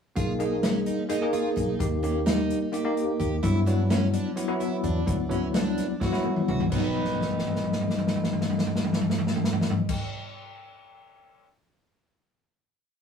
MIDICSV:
0, 0, Header, 1, 5, 480
1, 0, Start_track
1, 0, Tempo, 468384
1, 175, Time_signature, 7, 3, 24, 8
1, 13335, End_track
2, 0, Start_track
2, 0, Title_t, "Twelve-string acoustic guitar"
2, 0, Program_c, 0, 25
2, 168, Note_on_c, 0, 65, 77
2, 333, Note_off_c, 0, 65, 0
2, 408, Note_on_c, 0, 63, 64
2, 573, Note_off_c, 0, 63, 0
2, 650, Note_on_c, 0, 61, 82
2, 813, Note_off_c, 0, 61, 0
2, 888, Note_on_c, 0, 63, 66
2, 1051, Note_off_c, 0, 63, 0
2, 1125, Note_on_c, 0, 63, 70
2, 1289, Note_off_c, 0, 63, 0
2, 1363, Note_on_c, 0, 65, 68
2, 1527, Note_off_c, 0, 65, 0
2, 1598, Note_on_c, 0, 63, 71
2, 1927, Note_off_c, 0, 63, 0
2, 2078, Note_on_c, 0, 61, 66
2, 2243, Note_off_c, 0, 61, 0
2, 2317, Note_on_c, 0, 63, 80
2, 2646, Note_off_c, 0, 63, 0
2, 2795, Note_on_c, 0, 67, 70
2, 3124, Note_off_c, 0, 67, 0
2, 3277, Note_on_c, 0, 67, 74
2, 3441, Note_off_c, 0, 67, 0
2, 3514, Note_on_c, 0, 64, 80
2, 3679, Note_off_c, 0, 64, 0
2, 3754, Note_on_c, 0, 62, 67
2, 3919, Note_off_c, 0, 62, 0
2, 4001, Note_on_c, 0, 61, 81
2, 4164, Note_off_c, 0, 61, 0
2, 4239, Note_on_c, 0, 62, 70
2, 4403, Note_off_c, 0, 62, 0
2, 4476, Note_on_c, 0, 62, 75
2, 4641, Note_off_c, 0, 62, 0
2, 4717, Note_on_c, 0, 64, 69
2, 4881, Note_off_c, 0, 64, 0
2, 4957, Note_on_c, 0, 62, 70
2, 5286, Note_off_c, 0, 62, 0
2, 5445, Note_on_c, 0, 61, 67
2, 5607, Note_off_c, 0, 61, 0
2, 5680, Note_on_c, 0, 62, 80
2, 6009, Note_off_c, 0, 62, 0
2, 6165, Note_on_c, 0, 66, 75
2, 6493, Note_off_c, 0, 66, 0
2, 6646, Note_on_c, 0, 66, 68
2, 6809, Note_off_c, 0, 66, 0
2, 6885, Note_on_c, 0, 59, 62
2, 6926, Note_on_c, 0, 63, 65
2, 6967, Note_on_c, 0, 66, 61
2, 7004, Note_off_c, 0, 66, 0
2, 7008, Note_on_c, 0, 71, 61
2, 10191, Note_off_c, 0, 59, 0
2, 10212, Note_off_c, 0, 63, 0
2, 10252, Note_off_c, 0, 71, 0
2, 13335, End_track
3, 0, Start_track
3, 0, Title_t, "Tine electric piano"
3, 0, Program_c, 1, 4
3, 160, Note_on_c, 1, 58, 78
3, 165, Note_on_c, 1, 63, 71
3, 170, Note_on_c, 1, 68, 79
3, 380, Note_off_c, 1, 58, 0
3, 383, Note_off_c, 1, 63, 0
3, 385, Note_off_c, 1, 68, 0
3, 398, Note_on_c, 1, 58, 73
3, 405, Note_on_c, 1, 63, 70
3, 409, Note_on_c, 1, 68, 86
3, 1044, Note_off_c, 1, 58, 0
3, 1048, Note_off_c, 1, 63, 0
3, 1050, Note_off_c, 1, 68, 0
3, 1116, Note_on_c, 1, 58, 84
3, 1122, Note_on_c, 1, 63, 74
3, 1125, Note_on_c, 1, 68, 92
3, 1229, Note_off_c, 1, 58, 0
3, 1232, Note_off_c, 1, 63, 0
3, 1233, Note_off_c, 1, 68, 0
3, 1241, Note_on_c, 1, 58, 88
3, 1246, Note_on_c, 1, 63, 78
3, 1253, Note_on_c, 1, 68, 97
3, 1777, Note_off_c, 1, 58, 0
3, 1780, Note_off_c, 1, 63, 0
3, 1783, Note_off_c, 1, 68, 0
3, 1838, Note_on_c, 1, 58, 75
3, 1845, Note_on_c, 1, 63, 67
3, 1849, Note_on_c, 1, 67, 86
3, 2055, Note_off_c, 1, 58, 0
3, 2058, Note_off_c, 1, 63, 0
3, 2060, Note_off_c, 1, 67, 0
3, 2079, Note_on_c, 1, 58, 75
3, 2086, Note_on_c, 1, 63, 72
3, 2087, Note_on_c, 1, 67, 87
3, 2722, Note_off_c, 1, 58, 0
3, 2725, Note_off_c, 1, 63, 0
3, 2726, Note_off_c, 1, 67, 0
3, 2789, Note_on_c, 1, 58, 84
3, 2796, Note_on_c, 1, 63, 77
3, 2800, Note_on_c, 1, 67, 90
3, 2902, Note_off_c, 1, 58, 0
3, 2905, Note_off_c, 1, 63, 0
3, 2907, Note_off_c, 1, 67, 0
3, 2915, Note_on_c, 1, 58, 87
3, 2920, Note_on_c, 1, 63, 86
3, 2924, Note_on_c, 1, 67, 96
3, 3452, Note_off_c, 1, 58, 0
3, 3455, Note_off_c, 1, 63, 0
3, 3457, Note_off_c, 1, 67, 0
3, 3517, Note_on_c, 1, 54, 83
3, 3523, Note_on_c, 1, 59, 72
3, 3526, Note_on_c, 1, 64, 85
3, 3732, Note_off_c, 1, 54, 0
3, 3735, Note_off_c, 1, 59, 0
3, 3737, Note_off_c, 1, 64, 0
3, 3761, Note_on_c, 1, 54, 83
3, 3766, Note_on_c, 1, 59, 73
3, 3772, Note_on_c, 1, 64, 81
3, 4402, Note_off_c, 1, 54, 0
3, 4405, Note_off_c, 1, 59, 0
3, 4408, Note_off_c, 1, 64, 0
3, 4468, Note_on_c, 1, 54, 82
3, 4475, Note_on_c, 1, 59, 77
3, 4479, Note_on_c, 1, 64, 90
3, 4575, Note_off_c, 1, 54, 0
3, 4579, Note_off_c, 1, 59, 0
3, 4583, Note_off_c, 1, 64, 0
3, 4588, Note_on_c, 1, 54, 87
3, 4592, Note_on_c, 1, 59, 83
3, 4595, Note_on_c, 1, 64, 99
3, 5129, Note_off_c, 1, 54, 0
3, 5131, Note_off_c, 1, 59, 0
3, 5133, Note_off_c, 1, 64, 0
3, 5190, Note_on_c, 1, 54, 75
3, 5191, Note_on_c, 1, 59, 70
3, 5198, Note_on_c, 1, 64, 81
3, 5409, Note_off_c, 1, 54, 0
3, 5410, Note_off_c, 1, 59, 0
3, 5413, Note_off_c, 1, 64, 0
3, 5422, Note_on_c, 1, 54, 80
3, 5427, Note_on_c, 1, 59, 75
3, 5429, Note_on_c, 1, 64, 83
3, 6076, Note_off_c, 1, 54, 0
3, 6078, Note_off_c, 1, 59, 0
3, 6079, Note_off_c, 1, 64, 0
3, 6149, Note_on_c, 1, 54, 84
3, 6156, Note_on_c, 1, 59, 72
3, 6162, Note_on_c, 1, 64, 90
3, 6257, Note_off_c, 1, 54, 0
3, 6261, Note_off_c, 1, 59, 0
3, 6269, Note_off_c, 1, 64, 0
3, 6269, Note_on_c, 1, 54, 86
3, 6273, Note_on_c, 1, 59, 76
3, 6281, Note_on_c, 1, 64, 95
3, 6813, Note_off_c, 1, 54, 0
3, 6815, Note_off_c, 1, 59, 0
3, 6819, Note_off_c, 1, 64, 0
3, 6866, Note_on_c, 1, 54, 69
3, 6888, Note_on_c, 1, 59, 67
3, 6907, Note_on_c, 1, 63, 75
3, 10181, Note_off_c, 1, 54, 0
3, 10192, Note_off_c, 1, 59, 0
3, 10202, Note_off_c, 1, 63, 0
3, 13335, End_track
4, 0, Start_track
4, 0, Title_t, "Fingered electric bass"
4, 0, Program_c, 2, 33
4, 173, Note_on_c, 2, 35, 87
4, 898, Note_off_c, 2, 35, 0
4, 1608, Note_on_c, 2, 35, 80
4, 1788, Note_off_c, 2, 35, 0
4, 1849, Note_on_c, 2, 39, 79
4, 2572, Note_off_c, 2, 39, 0
4, 3282, Note_on_c, 2, 39, 79
4, 3462, Note_off_c, 2, 39, 0
4, 3522, Note_on_c, 2, 43, 98
4, 4248, Note_off_c, 2, 43, 0
4, 4961, Note_on_c, 2, 40, 86
4, 5143, Note_off_c, 2, 40, 0
4, 5202, Note_on_c, 2, 38, 88
4, 5931, Note_off_c, 2, 38, 0
4, 6645, Note_on_c, 2, 37, 79
4, 6827, Note_off_c, 2, 37, 0
4, 6883, Note_on_c, 2, 35, 83
4, 10190, Note_off_c, 2, 35, 0
4, 13335, End_track
5, 0, Start_track
5, 0, Title_t, "Drums"
5, 170, Note_on_c, 9, 42, 72
5, 173, Note_on_c, 9, 36, 98
5, 272, Note_off_c, 9, 42, 0
5, 275, Note_off_c, 9, 36, 0
5, 412, Note_on_c, 9, 42, 53
5, 514, Note_off_c, 9, 42, 0
5, 647, Note_on_c, 9, 38, 100
5, 647, Note_on_c, 9, 42, 75
5, 749, Note_off_c, 9, 38, 0
5, 749, Note_off_c, 9, 42, 0
5, 884, Note_on_c, 9, 42, 60
5, 987, Note_off_c, 9, 42, 0
5, 1123, Note_on_c, 9, 42, 79
5, 1226, Note_off_c, 9, 42, 0
5, 1366, Note_on_c, 9, 42, 58
5, 1469, Note_off_c, 9, 42, 0
5, 1607, Note_on_c, 9, 36, 64
5, 1611, Note_on_c, 9, 42, 57
5, 1709, Note_off_c, 9, 36, 0
5, 1713, Note_off_c, 9, 42, 0
5, 1846, Note_on_c, 9, 36, 98
5, 1847, Note_on_c, 9, 42, 78
5, 1948, Note_off_c, 9, 36, 0
5, 1949, Note_off_c, 9, 42, 0
5, 2090, Note_on_c, 9, 42, 55
5, 2192, Note_off_c, 9, 42, 0
5, 2323, Note_on_c, 9, 38, 104
5, 2323, Note_on_c, 9, 42, 77
5, 2426, Note_off_c, 9, 38, 0
5, 2426, Note_off_c, 9, 42, 0
5, 2567, Note_on_c, 9, 42, 56
5, 2669, Note_off_c, 9, 42, 0
5, 2805, Note_on_c, 9, 42, 72
5, 2908, Note_off_c, 9, 42, 0
5, 3046, Note_on_c, 9, 42, 51
5, 3148, Note_off_c, 9, 42, 0
5, 3281, Note_on_c, 9, 36, 63
5, 3284, Note_on_c, 9, 42, 54
5, 3383, Note_off_c, 9, 36, 0
5, 3387, Note_off_c, 9, 42, 0
5, 3520, Note_on_c, 9, 36, 103
5, 3523, Note_on_c, 9, 42, 72
5, 3623, Note_off_c, 9, 36, 0
5, 3625, Note_off_c, 9, 42, 0
5, 3762, Note_on_c, 9, 38, 29
5, 3762, Note_on_c, 9, 42, 51
5, 3865, Note_off_c, 9, 38, 0
5, 3865, Note_off_c, 9, 42, 0
5, 4002, Note_on_c, 9, 38, 98
5, 4002, Note_on_c, 9, 42, 73
5, 4104, Note_off_c, 9, 38, 0
5, 4104, Note_off_c, 9, 42, 0
5, 4239, Note_on_c, 9, 42, 59
5, 4341, Note_off_c, 9, 42, 0
5, 4478, Note_on_c, 9, 42, 76
5, 4581, Note_off_c, 9, 42, 0
5, 4721, Note_on_c, 9, 42, 56
5, 4824, Note_off_c, 9, 42, 0
5, 4958, Note_on_c, 9, 36, 64
5, 4961, Note_on_c, 9, 42, 54
5, 5061, Note_off_c, 9, 36, 0
5, 5064, Note_off_c, 9, 42, 0
5, 5200, Note_on_c, 9, 36, 103
5, 5201, Note_on_c, 9, 42, 74
5, 5302, Note_off_c, 9, 36, 0
5, 5303, Note_off_c, 9, 42, 0
5, 5440, Note_on_c, 9, 36, 67
5, 5442, Note_on_c, 9, 42, 51
5, 5542, Note_off_c, 9, 36, 0
5, 5544, Note_off_c, 9, 42, 0
5, 5681, Note_on_c, 9, 38, 98
5, 5681, Note_on_c, 9, 42, 76
5, 5784, Note_off_c, 9, 38, 0
5, 5784, Note_off_c, 9, 42, 0
5, 5920, Note_on_c, 9, 38, 31
5, 5920, Note_on_c, 9, 42, 63
5, 6023, Note_off_c, 9, 38, 0
5, 6023, Note_off_c, 9, 42, 0
5, 6163, Note_on_c, 9, 36, 94
5, 6164, Note_on_c, 9, 38, 56
5, 6265, Note_off_c, 9, 36, 0
5, 6266, Note_off_c, 9, 38, 0
5, 6284, Note_on_c, 9, 38, 50
5, 6386, Note_off_c, 9, 38, 0
5, 6403, Note_on_c, 9, 48, 66
5, 6505, Note_off_c, 9, 48, 0
5, 6521, Note_on_c, 9, 47, 64
5, 6624, Note_off_c, 9, 47, 0
5, 6644, Note_on_c, 9, 45, 78
5, 6746, Note_off_c, 9, 45, 0
5, 6766, Note_on_c, 9, 43, 81
5, 6869, Note_off_c, 9, 43, 0
5, 6883, Note_on_c, 9, 49, 82
5, 6885, Note_on_c, 9, 36, 87
5, 6985, Note_off_c, 9, 49, 0
5, 6987, Note_off_c, 9, 36, 0
5, 7129, Note_on_c, 9, 43, 39
5, 7220, Note_on_c, 9, 38, 40
5, 7232, Note_off_c, 9, 43, 0
5, 7308, Note_on_c, 9, 43, 48
5, 7322, Note_off_c, 9, 38, 0
5, 7394, Note_on_c, 9, 38, 50
5, 7411, Note_off_c, 9, 43, 0
5, 7483, Note_on_c, 9, 43, 47
5, 7496, Note_off_c, 9, 38, 0
5, 7568, Note_on_c, 9, 38, 52
5, 7585, Note_off_c, 9, 43, 0
5, 7654, Note_on_c, 9, 43, 53
5, 7671, Note_off_c, 9, 38, 0
5, 7742, Note_on_c, 9, 38, 48
5, 7756, Note_off_c, 9, 43, 0
5, 7831, Note_on_c, 9, 43, 49
5, 7844, Note_off_c, 9, 38, 0
5, 7915, Note_on_c, 9, 38, 57
5, 7934, Note_off_c, 9, 43, 0
5, 8004, Note_on_c, 9, 43, 55
5, 8018, Note_off_c, 9, 38, 0
5, 8094, Note_on_c, 9, 38, 55
5, 8107, Note_off_c, 9, 43, 0
5, 8179, Note_on_c, 9, 43, 55
5, 8196, Note_off_c, 9, 38, 0
5, 8271, Note_on_c, 9, 38, 59
5, 8282, Note_off_c, 9, 43, 0
5, 8355, Note_on_c, 9, 43, 54
5, 8374, Note_off_c, 9, 38, 0
5, 8440, Note_on_c, 9, 38, 59
5, 8458, Note_off_c, 9, 43, 0
5, 8533, Note_on_c, 9, 43, 61
5, 8543, Note_off_c, 9, 38, 0
5, 8619, Note_on_c, 9, 38, 64
5, 8635, Note_off_c, 9, 43, 0
5, 8709, Note_on_c, 9, 43, 67
5, 8722, Note_off_c, 9, 38, 0
5, 8795, Note_on_c, 9, 38, 66
5, 8811, Note_off_c, 9, 43, 0
5, 8883, Note_on_c, 9, 43, 63
5, 8898, Note_off_c, 9, 38, 0
5, 8972, Note_on_c, 9, 38, 72
5, 8986, Note_off_c, 9, 43, 0
5, 9060, Note_on_c, 9, 43, 70
5, 9075, Note_off_c, 9, 38, 0
5, 9150, Note_on_c, 9, 38, 70
5, 9163, Note_off_c, 9, 43, 0
5, 9237, Note_on_c, 9, 43, 71
5, 9253, Note_off_c, 9, 38, 0
5, 9326, Note_on_c, 9, 38, 76
5, 9339, Note_off_c, 9, 43, 0
5, 9412, Note_on_c, 9, 43, 75
5, 9429, Note_off_c, 9, 38, 0
5, 9501, Note_on_c, 9, 38, 75
5, 9515, Note_off_c, 9, 43, 0
5, 9589, Note_on_c, 9, 43, 76
5, 9603, Note_off_c, 9, 38, 0
5, 9677, Note_on_c, 9, 38, 75
5, 9692, Note_off_c, 9, 43, 0
5, 9762, Note_on_c, 9, 43, 78
5, 9779, Note_off_c, 9, 38, 0
5, 9852, Note_on_c, 9, 38, 82
5, 9864, Note_off_c, 9, 43, 0
5, 9942, Note_on_c, 9, 43, 85
5, 9954, Note_off_c, 9, 38, 0
5, 10044, Note_off_c, 9, 43, 0
5, 10133, Note_on_c, 9, 49, 91
5, 10136, Note_on_c, 9, 36, 99
5, 10235, Note_off_c, 9, 49, 0
5, 10238, Note_off_c, 9, 36, 0
5, 13335, End_track
0, 0, End_of_file